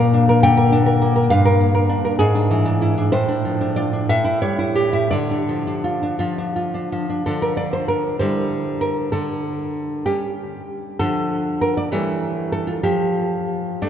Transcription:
0.00 1.27 A#2 medium
0.00 0.72 A#3 medium
0.00 0.28 A#4 medium
0.00 0.39 F5 loud
0.14 0.71 D4 medium
0.29 0.43 A#4 medium
0.43 1.31 D3 medium
0.43 1.27 G5 loud
0.57 0.85 A#4 medium
0.72 1.31 D4 medium
0.86 1.15 A#4 medium
1.02 1.31 A#3 medium
1.16 1.31 A#4 medium
1.30 2.18 G2 medium
1.30 2.16 F5 loud
1.45 1.73 A#4 medium
1.61 2.21 A#3 medium
1.75 2.04 A#4 medium
1.89 2.20 D4 medium
2.05 2.18 A#4 medium
2.19 3.09 G#2 medium
2.19 3.08 G#4 loud
2.35 2.64 D4 medium
2.51 3.12 E3 medium
2.65 2.96 D4 medium
2.82 3.12 E4 medium
2.98 3.13 D4 medium
3.12 4.06 A2 medium
3.12 3.74 C5 loud
3.28 3.60 D4 medium
3.45 4.09 F3 medium
3.61 3.92 D4 medium
3.76 4.09 F4 medium
3.76 4.08 D5 medium
3.93 4.09 D4 medium
4.09 5.09 A2 medium
4.09 4.41 E5 medium
4.25 4.57 E4 medium
4.42 5.12 G3 medium
4.42 4.92 C#5 medium
4.59 4.91 E4 medium
4.75 5.11 G4 medium
4.93 5.10 E4 soft
4.93 5.11 E5 medium
5.11 7.20 D3 medium
5.11 6.86 D5 medium
5.31 5.66 D4 soft
5.49 6.19 F3 medium
5.67 6.01 D4 soft
5.84 6.18 F4 medium
6.02 6.37 D4 medium
6.19 6.91 F3 medium
6.19 6.55 F4 medium
6.38 6.73 D4 soft
6.56 7.25 F4 medium
6.74 7.08 D4 medium
6.92 7.25 F3 medium
7.10 7.25 D4 soft
7.26 8.18 D3 medium
7.26 8.16 F3 soft
7.26 8.17 D4 soft
7.26 7.41 A4 medium
7.42 7.57 A#4 medium
7.57 7.73 D5 medium
7.73 7.88 C5 medium
7.88 8.18 A#4 medium
8.19 9.10 D3 medium
8.19 9.08 G3 soft
8.19 9.09 E4 soft
8.19 8.78 C5 medium
8.81 9.11 A#4 medium
9.12 10.04 D3 medium
9.12 10.03 A4 medium
10.06 10.96 G3 soft
10.06 10.96 C#4 medium
10.06 10.96 G4 medium
10.99 11.90 D3 medium
10.99 11.89 F3 soft
10.99 11.89 A3 soft
10.99 11.60 A4 medium
11.61 11.77 A#4 medium
11.77 11.92 D5 medium
11.92 12.80 E3 medium
11.92 12.79 G3 soft
11.92 12.79 A3 soft
11.92 12.50 C#5 medium
12.52 12.68 A4 medium
12.67 12.83 F4 medium
12.83 13.79 F3 medium
12.83 13.78 G4 medium
13.82 13.89 A3 medium
13.82 13.89 D4 medium
13.82 13.89 D5 medium

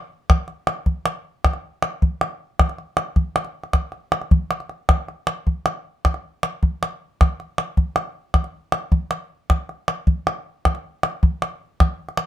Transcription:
0.30 calabash thump medium
0.30 calabash click medium
0.48 calabash click soft
0.67 calabash click medium
0.86 calabash thump medium
1.06 calabash click medium
1.45 calabash thump medium
1.45 calabash click medium
1.53 calabash click soft
1.82 calabash click medium
2.02 calabash thump medium
2.21 calabash click medium
2.59 calabash thump medium
2.59 calabash click medium
2.69 calabash click soft
2.78 calabash click soft
2.97 calabash click medium
3.16 calabash thump medium
3.16 calabash click soft
3.36 calabash click medium
3.45 calabash click soft
3.64 calabash click soft
3.73 calabash thump medium
3.73 calabash click medium
3.92 calabash click soft
4.12 calabash click medium
4.22 calabash click soft
4.31 calabash thump medium
4.51 calabash click medium
4.60 calabash click soft
4.69 calabash click soft
4.89 calabash thump medium
4.89 calabash click medium
5.08 calabash click soft
5.27 calabash click medium
5.47 calabash thump medium
5.66 calabash click medium
6.05 calabash thump medium
6.05 calabash click medium
6.14 calabash click soft
6.43 calabash click medium
6.63 calabash thump medium
6.83 calabash click medium
7.21 calabash thump medium
7.21 calabash click medium
7.40 calabash click soft
7.58 calabash click medium
7.77 calabash thump medium
7.96 calabash click medium
8.34 calabash thump medium
8.34 calabash click medium
8.44 calabash click soft
8.72 calabash click medium
8.92 calabash thump medium
9.11 calabash click medium
9.50 calabash thump medium
9.50 calabash click medium
9.69 calabash click soft
9.88 calabash click medium
10.07 calabash thump medium
10.27 calabash click medium
10.65 calabash thump medium
10.65 calabash click medium
10.75 calabash click soft
11.03 calabash click medium
11.23 calabash thump medium
11.42 calabash click medium
11.80 calabash thump medium
11.80 calabash click medium
12.09 calabash click soft
12.17 calabash click medium

